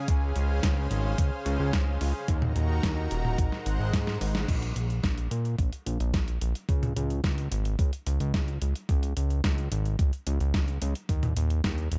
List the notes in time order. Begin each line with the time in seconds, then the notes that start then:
Already playing: C#3 G#4
0.08 C#2 C#4 C5 F5, kick, closed hi-hat
0.36 C#2, closed hi-hat
0.63 C#2, kick, snare, closed hi-hat
0.91 G#1, closed hi-hat
1.18 C#2, kick, closed hi-hat
1.46 C#2, closed hi-hat
1.60 C#2
1.73 C#2, kick, snare, closed hi-hat
2.01 C#2, open hi-hat
2.28 D#2 D#3 D#4 F#4 A#4 A#5, kick, closed hi-hat
2.42 mid tom
2.56 D#2, closed hi-hat
2.83 D#2, kick, snare, closed hi-hat
3.11 D#1, closed hi-hat
3.25 mid tom
3.38 G#1 G#3 C5 F#5, kick, closed hi-hat
3.52 snare
3.66 G#1, closed hi-hat
3.80 G#1
3.93 G#2, kick, snare, closed hi-hat
4.07 snare
4.21 G#1, open hi-hat
4.35 snare
4.48 A#1, kick, closed hi-hat, crash
4.62 closed hi-hat
4.76 A#1, closed hi-hat
4.90 closed hi-hat
5.03 A#1, kick, snare, closed hi-hat
5.18 closed hi-hat
5.31 A#2, closed hi-hat
5.45 closed hi-hat
5.59 A#1, kick, closed hi-hat
5.73 closed hi-hat
5.86 A#1, closed hi-hat
6.00 A#1, closed hi-hat
6.14 A#1, kick, snare, closed hi-hat
6.28 closed hi-hat
6.41 A#1, closed hi-hat
6.55 closed hi-hat
6.69 C#2, kick, closed hi-hat
6.83 closed hi-hat, mid tom
6.96 C#2, closed hi-hat
7.10 closed hi-hat
7.24 C#2, kick, snare, closed hi-hat
7.38 closed hi-hat
7.51 G#1, closed hi-hat
7.65 closed hi-hat
7.79 C#2, kick, closed hi-hat
7.93 closed hi-hat
8.07 C#2, closed hi-hat
8.20 C#2, closed hi-hat
8.34 C#2, kick, snare, closed hi-hat
8.48 closed hi-hat
8.62 C#2, closed hi-hat
8.75 closed hi-hat
8.89 C#2, kick, closed hi-hat
9.03 closed hi-hat
9.17 C#2, closed hi-hat
9.30 closed hi-hat
9.44 C#2, kick, snare, closed hi-hat
9.58 closed hi-hat
9.72 G#1, closed hi-hat
9.85 closed hi-hat
9.99 C#2, kick, closed hi-hat
10.13 closed hi-hat
10.27 C#2, closed hi-hat
10.40 C#2, closed hi-hat
10.54 C#2, kick, snare, closed hi-hat
10.68 closed hi-hat
10.82 C#2, closed hi-hat
10.95 closed hi-hat
11.09 D#2, kick, closed hi-hat
11.23 closed hi-hat, mid tom
11.37 D#2, closed hi-hat
11.50 closed hi-hat
11.64 D#2, kick, snare, closed hi-hat
11.78 closed hi-hat
11.92 D#1, closed hi-hat